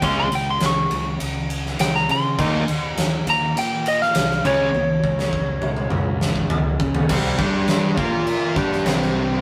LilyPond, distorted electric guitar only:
\new Staff \with { instrumentName = "Distorted electric guitar" } { \time 4/4 \key des \lydian \tempo 4 = 102 <des aes des'>8 r2. r8 | <ees bes ees'>8 r2. <des aes des'>8 | r1 | <c g c'>8 <g d' g'>4 <bes f' bes'>4 <g d' g'>8 <c g c'>4 | }